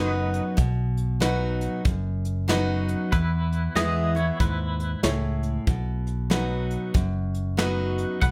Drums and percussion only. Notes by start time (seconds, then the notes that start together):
0.34 closed hi-hat
0.58 kick, closed hi-hat
0.97 closed hi-hat
1.22 snare, closed hi-hat
1.61 closed hi-hat
1.85 kick, closed hi-hat
2.25 closed hi-hat
2.49 snare, closed hi-hat
2.88 closed hi-hat
3.13 kick, closed hi-hat
3.52 closed hi-hat
3.76 snare, closed hi-hat
4.16 closed hi-hat
4.40 kick, closed hi-hat
4.80 closed hi-hat
5.04 snare, closed hi-hat
5.43 closed hi-hat
5.67 kick, closed hi-hat
6.07 closed hi-hat
6.31 snare, closed hi-hat
6.71 closed hi-hat
6.95 kick, closed hi-hat
7.34 closed hi-hat
7.59 snare, closed hi-hat
7.98 closed hi-hat
8.22 kick, closed hi-hat